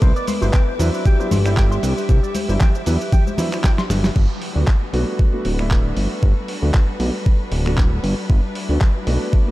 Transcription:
Already playing: E5 D6
0.02 C2 B4 C5, kick, shaker
0.16 D5, shaker
0.27 C5, open hi-hat, high conga, shaker
0.41 G1 F#3 B3 D4 E4 C5, shaker
0.53 G5, kick, clap, shaker
0.68 C5
0.79 E2 F#3 D4 E4 B4 C5, open hi-hat, shaker
0.94 B4, shaker
1.06 G4 G5, kick, shaker
1.19 F#3 B3 D4 E4 C5, shaker
1.31 G1 C5, open hi-hat, high conga, low conga, shaker
1.44 G3 D4 E4 C5, finger snap, shaker
1.57 G5, kick, clap, shaker
1.72 C6, shaker
1.83 C2 B4, open hi-hat, shaker
1.97 B4, shaker
2.09 C2 C5, kick, shaker
2.23 D5, shaker
2.35 C5, open hi-hat, high conga, shaker
2.48 G1 F#3 B3 D4 E4 C5, shaker
2.60 G5, kick, clap, low conga, shaker
2.75 C5, shaker
2.86 E2 F#3 B3 D4 E4 B4, open hi-hat, shaker
3.01 B4, shaker
3.12 G5, kick, low conga, shaker
3.27 C5, high conga, shaker
3.37 F#3 B3 D4 E4 C5, open hi-hat, low conga, shaker
3.51 F#3 D4 E4 C5, finger snap, shaker
3.64 G5, kick, snare, clap, shaker
3.78 C6, snare, shaker
3.90 G1 B4, snare, open hi-hat, shaker
4.04 B4, snare, shaker
4.16 G1 G3 D4 F#4 B4, kick, crash
4.42 open hi-hat
4.56 D2 A3 B3 D4 F#4
4.67 kick, clap
4.93 B1 A3 B3 D4 F#4, open hi-hat
5.19 kick
5.33 A3 B3 D4 F#4
5.45 D1, open hi-hat
5.59 A3 B3 D4 E4, finger snap
5.71 kick, clap
5.97 G1, open hi-hat
6.23 G1, kick
6.48 open hi-hat
6.62 D2 A3 B3 D4 F#4
6.74 kick, clap
7.00 B1 A3 B3 D4 F#4, open hi-hat
7.26 kick
7.52 D1, open hi-hat
7.66 A3 B3 D4 F#4, finger snap
7.77 kick, clap
8.03 G1, open hi-hat
8.29 G1 E4, kick
8.55 open hi-hat
8.69 D2 A3 B3 D4 F#4
8.81 kick, clap
9.07 B1 A3 B3 D4 F#4, open hi-hat
9.33 kick
9.47 A3 B3 D4 F#4

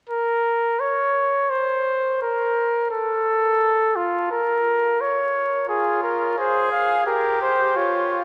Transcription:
0.09 A#4
0.80 C#5
1.50 C5
2.22 A#4
2.91 A4
3.96 F4
4.31 A#4
5.01 C#5
5.69 F4 G#4
6.03 A#4
6.38 G#4 C5
6.72 F5
7.06 G4 A#4
7.41 C5
7.76 F4 C#5

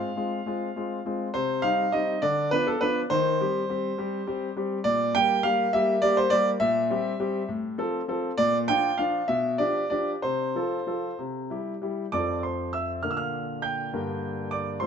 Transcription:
Already playing: F5
0.16 G#3 C4 F4
0.46 G#3 C4 F4
0.76 G#3 C4 F4
1.05 G#3 C4 F4
1.34 C3 C5
1.62 G3 C4 D#4 F5
1.92 G3 C4 D#4 D#5
2.22 D3 D5
2.51 F3 B3 D4 B4
2.67 A4
2.81 F3 B3 D4 B4
3.10 D#3 C5
3.41 G3 C4 G4
3.69 G3 C4 G4
3.98 G3 C4 G4
4.27 G3 C4 G4
4.57 G3 C4 G4
4.84 A#2 D5
5.15 G3 A#3 G4 G5
5.43 G3 A#3 G4 F5
5.73 G3 A#3 G4 E5
6.02 G3 A#3 G4 D5
6.17 C5
6.30 G3 A#3 G4 D5
6.60 A#2 E5
6.90 G3 C4 G4
7.20 G3 C4 G4
7.48 A2
7.78 F3 C4 A4
8.08 F3 C4 A4
8.38 A#2 D5
8.68 F3 D4 F4 G5
8.98 F3 D4 F4 F5
9.28 B2 E5
9.58 F3 D4 G4 D5
9.90 F3 D4 G4 D5
10.22 C3 C5
10.55 F3 F4 A4
10.87 F3 F4 A4
11.19 C3
11.50 G3 E4 G4
11.82 G3 E4 G4
12.12 F2 F3 C4 A4 D5 D6
12.43 C5 C6
12.73 E5 E6
13.03 A#2 D3 A#3 A#4 F6
13.11 E6
13.17 F5 F6
13.62 G5 G6
13.93 G2 D3 A#3 A#4
14.51 D5 D6
14.80 A2 F3 C4 A4 C5 C6

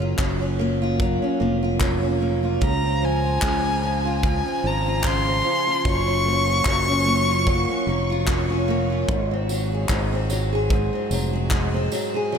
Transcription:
Already playing: F#1 F#3 A#3 C#4
0.00 F4
0.18 F#1 F#3, kick, clap
0.41 C#4
0.59 A#3
0.82 F4
1.00 F#3, kick
1.22 C#4
1.40 F1 A#3
1.63 F4
1.80 F#3, kick, clap
2.03 C#4
2.21 A#3
2.43 F4
2.61 C#2 C#3 A#5, kick
2.84 C4
3.02 F3 G#5
3.24 F4
3.42 C#2 C#3, kick, clap
3.65 C4
3.83 F3
4.05 F4
4.23 C#3 G#5, kick
4.46 C4
4.64 G#1 F3 A#5
4.86 F4
5.04 C#3 C6, kick, clap
5.26 C4
5.44 F3
5.67 F4
5.85 F#1 F#3 C#6, kick
6.07 C#4
6.26 A#3
6.47 F4
6.65 F#1 F#3, kick, clap
6.87 C#4
7.06 A#3
7.29 F4
7.47 F#3, kick
7.69 C#4
7.87 F1 A#3
8.10 F4
8.27 F#3, kick, clap
8.50 C#4
8.68 A#3
8.90 F4
9.09 G#1 G#2, kick
9.31 C4
9.49 F#3, tambourine
9.72 G#4
9.89 G#1 G#2, kick, clap
10.13 C4
10.30 F#3, tambourine
10.53 G#4
10.70 G#2, kick
10.93 C4
11.11 F1 F#3, tambourine
11.33 G#4
11.51 G#2, kick, clap
11.74 C4
11.92 F#3, tambourine
12.14 G#4
12.32 F#3

